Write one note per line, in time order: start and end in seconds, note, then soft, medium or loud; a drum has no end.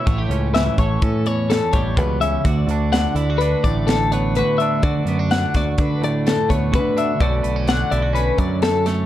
0.00 0.21 A3 medium
0.06 0.27 A1 medium
0.06 1.25 A2 medium
0.06 0.18 E4 medium
0.06 0.54 C#5 medium
0.06 kick medium
0.06 closed hi-hat medium
0.18 0.78 G4 medium
0.29 0.68 C#2 medium
0.29 1.02 C#4 medium
0.29 closed hi-hat medium
0.54 2.42 E3 medium
0.54 0.78 E5 medium
0.54 snare medium
0.54 closed hi-hat medium
0.78 0.97 A1 medium
0.78 2.46 A4 medium
0.78 1.03 C#5 medium
0.78 kick medium
0.78 closed hi-hat medium
1.02 1.60 A2 medium
1.02 2.43 C#4 medium
1.02 1.27 A4 medium
1.02 kick medium
1.02 closed hi-hat medium
1.26 2.42 E2 medium
1.26 1.50 C#5 medium
1.26 closed hi-hat medium
1.50 1.73 A4 medium
1.50 snare medium
1.50 closed hi-hat medium
1.73 1.98 A1 medium
1.73 2.46 G3 medium
1.73 1.97 C#5 medium
1.73 kick medium
1.73 closed hi-hat medium
1.97 2.36 C#2 medium
1.97 2.21 B2 medium
1.97 2.21 B4 medium
1.97 kick loud
1.97 closed hi-hat medium
2.21 2.45 C#3 medium
2.21 2.45 E5 medium
2.21 closed hi-hat medium
2.44 4.35 D2 medium
2.44 2.64 D2 medium
2.44 3.16 F#4 medium
2.44 2.92 D5 medium
2.44 kick loud
2.44 closed hi-hat medium
2.67 3.06 D2 medium
2.67 3.41 D4 medium
2.67 closed hi-hat medium
2.92 5.30 D3 medium
2.92 3.15 F#5 medium
2.92 snare medium
2.92 closed hi-hat medium
3.15 3.54 D2 medium
3.15 3.30 E4 soft
3.15 3.39 D5 medium
3.15 closed hi-hat medium
3.30 4.36 F#4 soft
3.38 4.61 D4 medium
3.38 3.63 B4 medium
3.38 closed hi-hat medium
3.64 4.41 A1 medium
3.64 4.84 A2 medium
3.64 3.87 D5 medium
3.64 kick medium
3.64 closed hi-hat medium
3.87 4.12 A4 medium
3.87 snare medium
3.87 closed hi-hat medium
4.12 5.08 B3 medium
4.12 4.35 C#5 medium
4.12 closed hi-hat medium
4.35 4.83 D2 medium
4.35 4.84 F#4 medium
4.35 4.59 B4 medium
4.35 closed hi-hat medium
4.58 5.08 D4 medium
4.58 4.82 E5 medium
4.58 closed hi-hat medium
4.83 6.71 D2 medium
4.83 5.02 D3 medium
4.83 5.55 F#4 medium
4.83 5.30 D5 medium
4.83 kick loud
4.83 closed hi-hat medium
5.05 5.44 F#2 medium
5.05 5.19 B3 medium
5.05 closed hi-hat medium
5.19 5.78 D4 soft
5.31 7.20 D3 medium
5.31 5.54 F#5 medium
5.31 snare medium
5.31 closed hi-hat medium
5.54 5.74 D2 medium
5.54 6.73 F#4 medium
5.54 5.81 D5 medium
5.54 kick medium
5.54 snare soft
5.54 closed hi-hat medium
5.78 6.36 D3 medium
5.78 6.96 D4 medium
5.78 6.03 B4 medium
5.78 kick loud
5.78 closed hi-hat medium
6.01 7.20 A2 medium
6.01 6.26 D5 medium
6.01 closed hi-hat medium
6.27 6.50 A4 medium
6.27 snare loud
6.27 closed hi-hat medium
6.49 6.76 D2 medium
6.49 7.17 B3 soft
6.49 6.73 C#5 medium
6.49 kick medium
6.49 closed hi-hat medium
6.72 7.20 D2 medium
6.72 7.12 D3 medium
6.72 7.23 F#4 medium
6.72 6.97 B4 medium
6.72 kick loud
6.72 closed hi-hat medium
6.97 7.22 D4 medium
6.97 7.21 E5 medium
6.97 closed hi-hat medium
7.20 7.40 B1 medium
7.20 7.68 B2 medium
7.20 7.67 D3 soft
7.20 8.86 A3 medium
7.20 7.43 C#4 soft
7.20 7.91 F#4 medium
7.20 7.68 D5 medium
7.20 kick medium
7.20 closed hi-hat medium
7.43 7.82 B1 medium
7.43 7.56 B3 medium
7.43 closed hi-hat medium
7.56 8.12 C#4 soft
7.67 9.06 D3 medium
7.67 7.92 F#5 medium
7.67 snare loud
7.67 closed hi-hat medium
7.91 8.30 B1 medium
7.91 8.02 E4 medium
7.91 8.14 D5 medium
7.91 closed hi-hat medium
8.02 9.06 F#4 soft
8.13 9.06 C#4 medium
8.13 8.39 B4 medium
8.13 closed hi-hat medium
8.38 9.06 F#2 medium
8.38 8.62 D5 medium
8.38 kick medium
8.38 closed hi-hat medium
8.62 8.86 A4 medium
8.62 snare loud
8.62 closed hi-hat medium
8.86 9.06 A3 medium
8.86 9.06 C#5 medium
8.86 snare soft
8.86 closed hi-hat medium